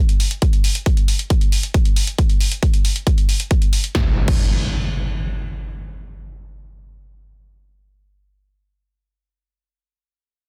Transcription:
0.09 closed hi-hat
0.20 open hi-hat
0.31 closed hi-hat
0.42 kick, closed hi-hat
0.53 closed hi-hat
0.64 open hi-hat
0.75 closed hi-hat
0.86 kick, closed hi-hat
0.97 closed hi-hat
1.08 open hi-hat
1.19 closed hi-hat
1.30 kick, closed hi-hat
1.41 closed hi-hat
1.52 open hi-hat
1.63 closed hi-hat
1.74 kick, closed hi-hat
1.85 closed hi-hat
1.96 open hi-hat
2.07 closed hi-hat
2.18 kick, closed hi-hat
2.29 closed hi-hat
2.41 open hi-hat
2.52 closed hi-hat
2.63 kick, closed hi-hat
2.74 closed hi-hat
2.85 open hi-hat
2.96 closed hi-hat
3.07 kick, closed hi-hat
3.18 closed hi-hat
3.29 open hi-hat
3.40 closed hi-hat
3.51 kick, closed hi-hat
3.62 closed hi-hat
3.73 open hi-hat
3.84 closed hi-hat
3.95 kick, snare, impact
4.28 kick, crash

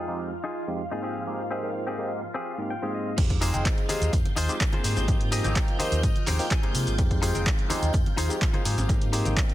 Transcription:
Already playing: D#4 F4 G#4 F5
0.08 F2 G#3 C4 D#4 G4
0.44 D#4 F4 G#4
0.68 F2 G#3 C4 D#4 G4
0.91 G#2 A#3 C4 D#4 F4 G#4
1.03 C4 G4 G#4
1.27 G#2 A#3 C4 D#4 G4
1.51 G#2 A#3 C4 D#4 G4 G#4
1.63 G#2 A#3 C4 D#4 G5
1.87 C4 G4 G#4
1.98 G#2 A#3 C4 D#4 G4
2.34 C4 G4 G#4
2.58 G#2 A#3 C4 D#4 G4
2.70 G5
2.82 G#2 G#3 A#3 C4 D#4 G4 G#4
2.94 D#5
3.17 F2 G#3 C4 D#4 F4 G4 G6, kick, closed hi-hat, tambourine, crash, high conga, shaker
3.30 kick, closed hi-hat, tambourine
3.41 G#3 C4 D#4 F4 G4 G#4 C5, open hi-hat, tambourine, shaker
3.53 F1 G#3 C4 D#4 G5, closed hi-hat, tambourine, high conga, shaker
3.65 kick, clap, closed hi-hat, tambourine, shaker
3.78 closed hi-hat, tambourine
3.89 G#3 C4 D#4 F4 G4 G#4 C5, muted fingered electric bass stroke, open hi-hat, tambourine, high conga, shaker
4.01 D#2, closed hi-hat, tambourine, shaker
4.13 F2, kick, closed hi-hat, tambourine, shaker
4.25 closed hi-hat, tambourine, high conga, low conga
4.36 D#2 D#4 F4 G#4 C5, open hi-hat, tambourine, shaker
4.48 G#3 C4 D#4 G4, closed hi-hat, tambourine, shaker
4.61 kick, clap, closed hi-hat, tambourine, shaker
4.72 A#3 C4 D#4 F4 G#4 C5, closed hi-hat, tambourine, high conga
4.84 G#2 D#4 G4 G#4 C5, open hi-hat, tambourine, shaker
4.96 G#1, closed hi-hat, tambourine, low conga, shaker
5.07 G#2 A#3 C4 D#4 G4, kick, closed hi-hat, tambourine, high conga, shaker
5.21 closed hi-hat, tambourine
5.31 A#3 C4 D#4 G4 G#4 D#5, open hi-hat, tambourine, shaker
5.44 G#1 A#3 C4 D#4 G5, closed hi-hat, tambourine, high conga, low conga, shaker
5.56 kick, clap, closed hi-hat, tambourine, shaker
5.68 closed hi-hat, tambourine
5.79 A#3 C4 D#4 G4 G#4 C5, muted fingered electric bass stroke, open hi-hat, tambourine, high conga, shaker
5.92 D#2, closed hi-hat, tambourine, shaker
6.03 G#2 D#5, kick, closed hi-hat, tambourine, shaker
6.16 muted fingered electric bass stroke, closed hi-hat, tambourine, high conga
6.27 D#2 D#4 G4 G#4 C5 G5, clap, open hi-hat, tambourine, low conga, shaker
6.39 A#3 C4 D#4 G4, open hi-hat, tambourine, shaker
6.51 G#5, kick, clap, closed hi-hat, tambourine, shaker
6.63 G#3 A#3 C4 D#4 G4 G#4 C5, closed hi-hat, tambourine, high conga
6.75 C3, open hi-hat, tambourine, shaker
6.87 G#1, closed hi-hat, tambourine, shaker
6.98 F2 G#3 C4 D#4 G4, kick, closed hi-hat, tambourine, high conga, shaker
7.11 kick, closed hi-hat, tambourine
7.22 G#3 C4 D#4 F4 G4 G#4 C5, open hi-hat, tambourine, shaker
7.34 F1 G#3 C4 D#4 G5, closed hi-hat, tambourine, high conga, shaker
7.46 kick, clap, closed hi-hat, tambourine, shaker
7.57 closed hi-hat, tambourine
7.69 G#3 C4 D#4 F4 G4 G#4 C5, muted fingered electric bass stroke, open hi-hat, tambourine, high conga, shaker
7.82 D#2, closed hi-hat, tambourine, shaker
7.93 F2, kick, closed hi-hat, tambourine, shaker
8.06 closed hi-hat, tambourine, high conga, low conga
8.17 D#2 D#4 F4 G#4 C5, open hi-hat, tambourine, shaker
8.29 G#3 C4 D#4 G4, closed hi-hat, tambourine, shaker
8.41 kick, clap, closed hi-hat, tambourine, shaker
8.53 A#3 C4 D#4 F4 G#4 C5, closed hi-hat, tambourine, high conga
8.65 G#2 D#4 G4 G#4 C5, open hi-hat, tambourine, shaker
8.77 G#1, closed hi-hat, tambourine, low conga, shaker
8.88 G#2 A#3 C4 D#4 G4, kick, closed hi-hat, tambourine, high conga, shaker
9.02 closed hi-hat, tambourine
9.12 A#3 C4 D#4 G4 G#4 C5, open hi-hat, tambourine, shaker
9.25 G#1 A#3 C4 D#4 G5, closed hi-hat, tambourine, high conga, low conga, shaker
9.37 kick, clap, closed hi-hat, tambourine, shaker
9.49 closed hi-hat, tambourine

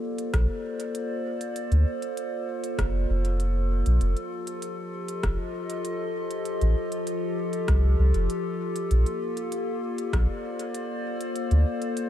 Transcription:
Already playing: A#3 F4 G4 A4 C5 D5
0.18 closed hi-hat
0.34 A#1, kick, cross-stick, closed hi-hat
0.80 closed hi-hat
0.95 closed hi-hat
1.41 closed hi-hat
1.56 closed hi-hat
1.72 D2, closed hi-hat
2.02 closed hi-hat
2.17 closed hi-hat
2.64 closed hi-hat
2.79 F1, kick, cross-stick, closed hi-hat
3.09 F1
3.25 closed hi-hat
3.40 closed hi-hat
3.86 A#1, closed hi-hat
4.01 F1 F3, closed hi-hat
4.17 closed hi-hat
4.23 G4
4.47 closed hi-hat
4.62 closed hi-hat
4.97 D#5
5.08 closed hi-hat
5.23 F1, kick, cross-stick, closed hi-hat
5.70 closed hi-hat
5.85 closed hi-hat
6.31 closed hi-hat
6.45 closed hi-hat
6.61 A1, closed hi-hat
6.92 closed hi-hat
7.07 closed hi-hat
7.53 closed hi-hat
7.68 C2, kick, cross-stick, closed hi-hat
7.99 C2
8.14 F1, closed hi-hat
8.30 closed hi-hat
8.76 closed hi-hat
8.91 A#1 A#3, closed hi-hat
9.06 closed hi-hat
9.37 closed hi-hat
9.52 closed hi-hat
9.73 D5
9.98 closed hi-hat
10.13 A#1, kick, cross-stick, closed hi-hat
10.20 C5
10.59 closed hi-hat
10.74 closed hi-hat
11.21 closed hi-hat
11.36 closed hi-hat
11.51 D2, closed hi-hat
11.82 closed hi-hat
11.97 closed hi-hat

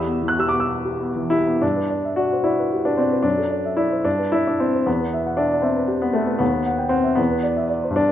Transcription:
Already playing: E2 G4 E5 B5 E6
0.07 B3
0.23 E3
0.28 F#6
0.39 G4 E6
0.49 D6
0.53 B3
0.60 E6
0.85 G4
1.00 B3
1.16 E3
1.30 E4 G4
1.47 B3
1.62 G2 D4
1.76 B4
1.90 D5
2.05 E5
2.16 F#4 D5
2.32 C5
2.44 E4 D5
2.59 B4
2.72 G4
2.85 D4 B4
2.97 C4 D5
3.11 B4
3.23 F#2 D4
3.38 A4
3.50 D5
3.65 E5
3.77 E4 D5
3.92 C5
4.05 G2 D4
4.18 B4
4.32 E4 D5
4.47 D4 E5
4.60 C4 D5
4.75 C5
4.86 E2 B3
5.00 B4
5.13 E5
5.26 F#5
5.37 D4 E5
5.52 D5
5.62 C4 E5
5.76 B4
5.88 G4
6.02 B3 B4
6.13 A3 E5
6.27 B4
6.38 D#2 B3
6.53 B4
6.66 F#5
6.78 G5
6.89 C4 F#5
7.03 E5
7.15 E2 B3
7.30 B4
7.43 D5
7.56 E5
7.69 D5
7.84 C5
7.90 G2
7.96 D4
8.09 B4

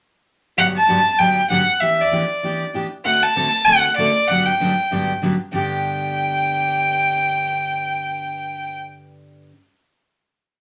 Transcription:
0.57 G2 D3 F#3 B3 D4 G4 F#5
0.76 A5
0.88 G2 D3 F#3 B3 D4 G4
1.19 G2 D3 F#3 B3 D4 G4 G5
1.50 G2 D3 F#3 B3 D4 G4 F#5
1.81 E3 B3 D4 G4 E5
2.01 D5
2.11 E3 B3 D4 G4
2.43 E3 B3 D4 G4
2.74 E3 B3 D4 G4
3.05 D3 A3 C4 F#4 A4 F#5
3.23 A5
3.36 D3 A3 C4 F#4 A4
3.65 D3 A3 C4 F#4 A4 F#5
3.97 D3 A3 C4 F#4 A4 D5
4.28 G2 D3 F#3 B3 D4 G4 F#5
4.46 G5
4.60 G2 D3 F#3 B3 D4 G4
4.91 G2 D3 F#3 B3 D4 G4
5.22 G2 D3 F#3 B3 D4 G4
5.52 G2 D3 B3 D4 G4 G5

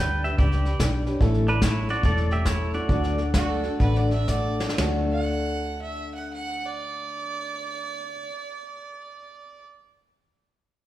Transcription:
Already playing: D2 G3 D4 G4 B4 G5
0.00 D4 G4
0.24 D4 G4 B4 E5, snare
0.38 C#2 G3 D4 G4 B4 D5, kick, snare
0.52 snare
0.65 D4 G4 B4, snare
0.79 B1 G3 D4 G4 B4, kick, snare, hi-hat pedal
1.06 D4 G4 B4 C#5, snare
1.19 A1 A2 E3 A3 C#4 E4 A4, kick, snare
1.34 snare
1.47 C#4 D4 E4 B4, snare
1.62 A3 C#4 E4 A4 C#5, kick, snare, hi-hat pedal
1.88 A3 C#4 E4 F#4 A4 D5, snare
2.03 E1 A2 E3 A3 C#4 E4 A4 D5, kick, snare
2.17 snare
2.31 A3 C#4 E4 G4 A4 E5, snare
2.45 A3 C#4 E4 A4 C#5, kick, snare, hi-hat pedal
2.73 A3 C#4 E4 F#4 A4 D5, snare
2.88 D2 D3 A3 D4 F#4 A4, kick, snare
3.03 snare
3.18 D4 F#4 A4, snare
3.34 A3 D4 F#4 A4, kick, snare, hi-hat pedal
3.49 A4
3.63 D4 F#4 A4, snare
3.80 A1 D3 A3 D4 F#4 A4 B4, kick, snare
3.95 D5, snare
4.11 D4 F#4 A4 E5, snare
4.28 A3 D4 F#4 A4 D5, kick, snare, hi-hat pedal
4.60 D4 F#4 A4, snare
4.69 snare
4.76 D2 D3 A3 D4 F#4, snare, ride bell
4.81 D4 F#4 A4
5.12 F#5
5.82 E5
6.15 F#5
6.33 F#5
6.66 D5

